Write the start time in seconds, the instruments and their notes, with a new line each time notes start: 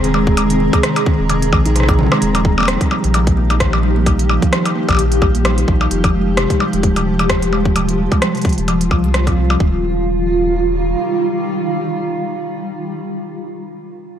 Already playing: sub bass D#1, ambient pad D#3 C4 G#4, synth texture A#5
0.04 kalimba D#3, closed hi-hat
0.14 kalimba G#3, percussion blips
0.27 kalimba C4, kick
0.37 kalimba G#3, closed hi-hat, percussion blips
0.50 kalimba C3, closed hi-hat
0.60 kalimba D#3
0.73 kalimba C3, kick, closed hi-hat, percussion blips
0.83 kalimba D#3, cross-stick, closed hi-hat
0.96 closed hi-hat, percussion blips
1.06 kalimba C4, kick
1.19 sub bass D#1
1.29 kalimba C3, closed hi-hat, percussion blips
1.42 kalimba D#3, closed hi-hat
1.53 sub bass A#1, kick, percussion blips
1.66 kalimba D#4, closed hi-hat
1.76 kalimba C3, cross-stick, closed hi-hat
1.80 cross-stick
1.83 cross-stick
1.89 kalimba D#3, kick, closed hi-hat, percussion blips
1.99 kalimba C3, mid tom
2.03 mid tom
2.06 mid tom
2.12 kalimba G#3, cross-stick, mid tom, percussion blips
2.14 mid tom
2.18 sub bass D#1, kalimba D#3, ambient pad F3 D#4 G4, closed hi-hat, mid tom
2.35 kalimba F3, closed hi-hat, percussion blips
2.45 kalimba G3, kick
2.58 kalimba A#3, percussion blips
2.60 percussion blips
2.63 percussion blips
2.65 kalimba G3, cross-stick, closed hi-hat, percussion blips
2.81 kalimba D#3, kick, closed hi-hat
2.91 kalimba F3, percussion blips
3.04 sub bass A#1, kalimba D#3, closed hi-hat
3.14 kalimba F3, closed hi-hat, percussion blips
3.27 kick, closed hi-hat
3.37 kalimba A#3
3.50 closed hi-hat, percussion blips
3.60 kalimba D#3, kick, cross-stick, closed hi-hat
3.73 kalimba F3, percussion blips
3.83 kalimba G3
3.96 kalimba A#3
4.06 kalimba G3, kick, closed hi-hat, percussion blips
4.19 kalimba D#3, closed hi-hat
4.29 kalimba F3, percussion blips
4.42 kalimba D#3, kick, closed hi-hat
4.53 kalimba F3, cross-stick, closed hi-hat
4.66 closed hi-hat, percussion blips
4.76 kalimba A#3
4.89 sub bass A#1, kick, closed hi-hat, percussion blips
4.91 percussion blips
4.93 percussion blips
4.95 percussion blips
4.97 kalimba D#3, closed hi-hat, percussion blips
5.12 kalimba F3, closed hi-hat
5.22 sub bass A#1, kalimba G3, kick, percussion blips
5.35 kalimba A#3, closed hi-hat
5.45 kalimba G3, cross-stick, closed hi-hat, percussion blips
5.58 kalimba D#3, closed hi-hat
5.68 sub bass A#1, kalimba F3, kick
5.81 kalimba D#3, percussion blips
5.91 sub bass F1, kalimba F3, closed hi-hat
6.04 kick, closed hi-hat, percussion blips
6.14 kalimba G#3
6.37 kalimba C3, cross-stick, closed hi-hat, percussion blips
6.50 kalimba F3, kick, closed hi-hat
6.60 kalimba G3, percussion blips
6.73 sub bass D#1, kalimba G#3, closed hi-hat
6.83 kalimba G3, kick, closed hi-hat
6.96 kalimba C3, closed hi-hat, percussion blips
7.06 kalimba F3
7.19 kalimba C3, closed hi-hat, percussion blips
7.29 kalimba F3, kick, cross-stick, closed hi-hat
7.42 closed hi-hat
7.53 kalimba G#3, percussion blips
7.65 kick
7.76 kalimba C3, ambient pad F4, closed hi-hat, percussion blips
7.89 kalimba F3, closed hi-hat
7.99 kalimba G3
8.12 kalimba G#3, kick, closed hi-hat, percussion blips
8.22 kalimba G3, cross-stick, closed hi-hat
8.35 kalimba C3, closed hi-hat
8.37 closed hi-hat
8.42 kalimba F3, kick, closed hi-hat
8.45 closed hi-hat
8.49 closed hi-hat
8.53 closed hi-hat
8.58 sub bass D#1, kalimba C3, closed hi-hat
8.68 kalimba F3, closed hi-hat, percussion blips
8.81 closed hi-hat
8.91 sub bass C2, kalimba F3, kick, percussion blips
9.04 kalimba G3, closed hi-hat
9.14 kalimba C3, cross-stick, closed hi-hat
9.27 kalimba C4, kick, closed hi-hat, percussion blips
9.37 sub bass C2
9.50 kalimba G3, percussion blips
9.60 sub bass D#1, ambient pad D#3 G3 F4, kalimba D#3, kick